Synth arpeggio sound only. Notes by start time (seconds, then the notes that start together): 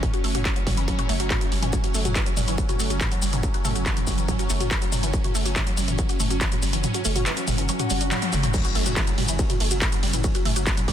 0.03 F#3
0.14 F#4
0.24 A3
0.35 F#4
0.45 F#4
0.56 F#3
0.67 G3
0.77 E3
0.88 F#3
0.99 F#4
1.09 A3
1.20 F#4
1.31 F#4
1.41 F#3
1.52 G3
1.62 E3
1.73 F#3
1.84 F#4
1.94 A3
2.05 F#4
2.16 E3
2.26 F#3
2.37 G3
2.48 E3
2.58 F#3
2.69 F#4
2.79 A3
2.90 F#4
3.01 E3
3.11 F#3
3.22 G3
3.33 E3
3.43 F#3
3.54 F#4
3.65 A3
3.75 F#4
3.86 E3
3.97 F#3
4.07 G3
4.18 E3
4.28 F#3
4.39 F#4
4.50 A3
4.60 F#4
4.71 E3
4.82 F#3
4.92 G3
5.03 E3
5.14 F#3
5.24 F#4
5.35 A3
5.45 F#4
5.56 E3
5.67 F#3
5.77 G3
5.88 E3
5.99 F#3
6.09 F#4
6.20 A3
6.30 F#4
6.41 E3
6.52 F#3
6.62 G3
6.73 E3
6.84 F#3
6.94 F#4
7.05 A3
7.16 F#4
7.26 E3
7.37 F#3
7.48 G3
7.58 E3
7.69 F#3
7.80 F#4
7.90 G3
8.01 D4
8.11 F#3
8.22 F#3
8.33 A3
8.43 F#3
8.54 F#3
8.65 F#4
8.75 A3
8.86 F#4
8.97 E3
9.07 F#3
9.18 G3
9.29 E3
9.39 F#3
9.50 F#4
9.61 A3
9.71 F#4
9.82 E3
9.92 F#3
10.03 G3
10.14 E3
10.24 F#3
10.35 F#4
10.45 A3
10.56 F#4
10.67 E3
10.77 F#3
10.88 G3